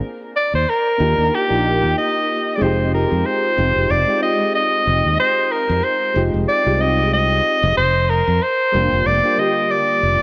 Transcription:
0.36 soprano saxophone D5
0.53 fretless electric bass D#2, soprano saxophone C5
0.70 soprano saxophone A#4
0.98 fretless electric bass D#2, synth keys A#3 D4 D#4 F4 G4
1.18 fretless electric bass D#2
1.35 soprano saxophone G4
1.48 fretless electric bass A#1, synth keys A#3 D4 D#4 F4 G4
1.61 synth keys A#3 D#4
1.65 synth keys F4 G4
1.82 fretless electric bass D#2
1.98 soprano saxophone D#5
2.55 synth keys G#3 C4, soprano saxophone D5
2.61 fretless electric bass F1, synth keys D#4 F4 G4, soprano saxophone C5
2.94 soprano saxophone A#4
3.12 fretless electric bass F2
3.26 soprano saxophone C5
3.56 fretless electric bass F1, synth keys G#3 C4 D#4 F4 G4
3.76 fretless electric bass F1
3.90 fretless electric bass F1, soprano saxophone D5
4.06 synth keys G#3 C4 D#4 F4 G4
4.19 synth keys G#3 C4 D#4, soprano saxophone D#5
4.23 synth keys F4 G4
4.55 soprano saxophone D#5
4.87 fretless electric bass F1
5.05 fretless electric bass D#2
5.20 soprano saxophone C5
5.52 soprano saxophone A#4
5.69 fretless electric bass F2
5.84 soprano saxophone C5
6.14 fretless electric bass F1, synth keys G#3 C4 D#4 F4 G4
6.34 fretless electric bass F1
6.48 soprano saxophone D5
6.64 fretless electric bass C2, synth keys G#3 C4 D#4 F4 G4
6.77 synth keys G#3 C4 D#4
6.81 synth keys F4 G4, soprano saxophone D#5
7.13 soprano saxophone D#5
7.63 fretless electric bass F1
7.77 fretless electric bass F1, soprano saxophone C5
8.10 soprano saxophone A#4
8.27 fretless electric bass F2
8.42 soprano saxophone C5
8.72 fretless electric bass F1, synth keys G3 A#3 D4 F4 G4
8.92 fretless electric bass F1
9.06 fretless electric bass F1, soprano saxophone D5
9.22 synth keys G3 A#3 D4 F4 G4
9.35 synth keys D3 G3 A#3
9.39 synth keys F4 G4, soprano saxophone D#5
9.71 soprano saxophone D5
10.03 fretless electric bass F1

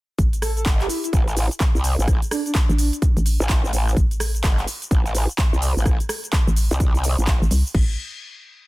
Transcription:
0.18 fm bass A1, kick, closed hi-hat, cabasa
0.33 closed hi-hat, cabasa
0.42 soft synth lead A4, cross-stick, open hi-hat, cabasa
0.57 soft synth lead A4, closed hi-hat, cabasa
0.66 wobble bass G1, kick, clap, closed hi-hat, cabasa
0.80 soft synth lead G4, clap, closed hi-hat
0.89 soft synth lead E4, open hi-hat, cabasa
1.04 soft synth lead E4, closed hi-hat, cabasa
1.13 wobble bass A1, kick, closed hi-hat, cabasa
1.28 closed hi-hat, cabasa
1.37 open hi-hat, cabasa
1.51 closed hi-hat, cabasa
1.60 kick, clap, closed hi-hat, cabasa
1.75 wobble bass C2, cabasa
1.84 open hi-hat, cabasa
1.99 wobble bass A1, cabasa
2.08 kick, cross-stick, closed hi-hat, cabasa
2.22 closed hi-hat, cabasa
2.31 soft synth lead D4, cross-stick, open hi-hat, cabasa
2.46 soft synth lead D4, closed hi-hat, cabasa
2.55 kick, clap, closed hi-hat, cabasa
2.69 fm bass A1, soft synth lead D4, closed hi-hat, cabasa
2.78 soft synth lead D4, open hi-hat, cabasa
2.93 closed hi-hat, cabasa
3.02 kick, closed hi-hat, cabasa
3.17 fm bass A1, closed hi-hat, cabasa
3.26 open hi-hat, cabasa
3.40 wobble bass A1, closed hi-hat, cabasa
3.49 kick, clap, closed hi-hat, cabasa
3.65 cabasa
3.73 wobble bass A1, open hi-hat, cabasa
3.88 cabasa
3.97 fm bass A1, kick, closed hi-hat, cabasa
4.11 closed hi-hat, cabasa
4.20 cross-stick, open hi-hat, cabasa
4.35 closed hi-hat, cabasa
4.44 wobble bass G1, kick, clap, closed hi-hat, cabasa
4.58 clap, closed hi-hat
4.67 open hi-hat, cabasa
4.82 closed hi-hat, cabasa
4.91 wobble bass A1, kick, closed hi-hat, cabasa
5.06 closed hi-hat, cabasa
5.15 open hi-hat, cabasa
5.29 closed hi-hat, cabasa
5.38 kick, clap, closed hi-hat, cabasa
5.53 wobble bass C2, cabasa
5.62 open hi-hat, cabasa
5.77 wobble bass A1, cabasa
5.86 kick, cross-stick, closed hi-hat, cabasa
6.00 closed hi-hat, cabasa
6.09 cross-stick, open hi-hat, cabasa
6.24 closed hi-hat, cabasa
6.33 kick, clap, closed hi-hat, cabasa
6.47 fm bass A1, closed hi-hat, cabasa
6.56 open hi-hat, cabasa
6.71 wobble bass C2, closed hi-hat, cabasa
6.80 kick, closed hi-hat, cabasa
6.95 closed hi-hat, cabasa
7.04 open hi-hat, cabasa
7.18 wobble bass A1, closed hi-hat, cabasa
7.27 kick, clap, closed hi-hat, cabasa
7.42 fm bass A1, cabasa
7.51 fm bass C2, open hi-hat, cabasa
7.66 cabasa
7.75 fm bass A1, kick, crash

